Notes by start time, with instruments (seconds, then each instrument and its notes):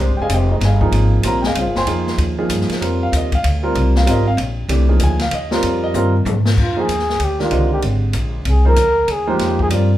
Already playing: upright bass C2
0.00 grand piano G#3 D4 G4 C5
0.09 upright bass G#1
0.19 upright bass F1, grand piano G#4 D#5 F5 G#5
0.29 upright bass F1, hi-hat pedal, ride
0.34 grand piano G4 C5 D#5 G5
0.52 grand piano D#4 G#4 C5 D#5
0.60 upright bass G1, snare, ride
0.65 grand piano G#4 D#5 F5 G#5
0.81 grand piano F3 A#3 D#4 G#4, kick
0.92 upright bass G#1, ride
1.23 upright bass A#1, grand piano G3 C4 F4 A#4, hi-hat pedal, ride
1.27 grand piano A#5
1.42 grand piano G5, snare
1.46 grand piano G#4 D#5 F5 G#5
1.55 upright bass C2, grand piano G#4 F5, ride
1.59 grand piano F4 C5
1.66 upright bass G#1
1.75 upright bass F1, grand piano C5 G5 G#5 C6, snare
1.86 upright bass F2, grand piano F3 A#3 D#4 G#4, ride
2.07 snare
2.18 upright bass D#2, ride
2.38 grand piano F3 A#3 D#4 G#4
2.49 upright bass G2, hi-hat pedal, ride
2.61 snare
2.69 muted upright bass stroke, snare, ride
2.81 upright bass F2, grand piano G3 C4 F4 A#4, ride
3.03 grand piano F5
3.12 upright bass D#2, hi-hat pedal, ride
3.17 grand piano D#5
3.32 grand piano F5, kick, ride
3.44 upright bass D2, ride
3.63 grand piano G3 C4 F4 A#4
3.75 upright bass C2, ride
3.96 grand piano F5, snare
4.06 upright bass G#1, grand piano G3 C4 F4 A#4, hi-hat pedal, ride
4.11 grand piano D#5
4.28 grand piano F5
4.37 upright bass A#1, ride
4.68 upright bass C2, grand piano E3 A3 D4 G4, ride
4.89 grand piano F3 A#3 D#4 G#4
4.99 upright bass D2, hi-hat pedal, ride
5.04 grand piano G#5
5.19 grand piano F5, snare, ride
5.31 upright bass D#2, grand piano D#5, ride
5.51 grand piano G3 C4 F4 A#4, snare
5.63 upright bass F2, ride
5.84 grand piano D#5
5.94 upright bass G2, grand piano G3 C4 F4 A#4, hi-hat pedal, mid tom
6.25 upright bass G#2, floor tom, hi-hat pedal
6.46 snare
6.57 upright bass F2, kick, crash
6.62 trumpet F4
6.76 grand piano F3 A#3 D#4 G#4 C5
6.80 trumpet G#4
6.88 upright bass D#2, hi-hat pedal, ride
6.99 snare
7.10 snare
7.19 upright bass D2, ride
7.24 trumpet G4
7.39 grand piano D#3 G#3 D4 G4 A#4, trumpet F4, snare
7.51 upright bass C2, grand piano D3 G#3 G4 C5 D#5, ride
7.73 trumpet G4
7.82 upright bass G#1, ride
8.13 upright bass A#1, hi-hat pedal, ride
8.45 upright bass C2, ride
8.49 trumpet G#4
8.65 grand piano F3 A#3 D#4 G#4 C5, trumpet A#4
8.76 upright bass D2, hi-hat pedal, ride
9.08 upright bass D#2, ride
9.12 trumpet G#4
9.27 grand piano F3 G#3 A#3 D#4 C5, trumpet G4
9.39 upright bass F2, snare, ride
9.59 trumpet G#4, kick
9.70 upright bass G2, grand piano G3 C4 F4 A#4 D5, hi-hat pedal, ride